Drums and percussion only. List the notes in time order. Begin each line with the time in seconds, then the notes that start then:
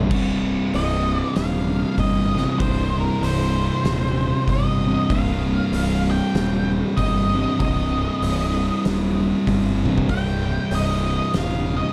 0.11 kick, crash
0.74 open hi-hat
1.36 snare, open hi-hat
1.98 kick, open hi-hat
2.37 snare
2.60 kick, open hi-hat
3.23 open hi-hat
3.85 snare, open hi-hat
4.48 kick, open hi-hat
5.10 kick, open hi-hat
5.73 open hi-hat
6.35 snare, open hi-hat
6.97 kick, open hi-hat
7.60 kick, open hi-hat
8.22 open hi-hat
8.85 snare, open hi-hat
9.47 kick, open hi-hat
9.86 kick
9.98 kick
10.09 kick, open hi-hat
10.71 open hi-hat
11.34 snare, open hi-hat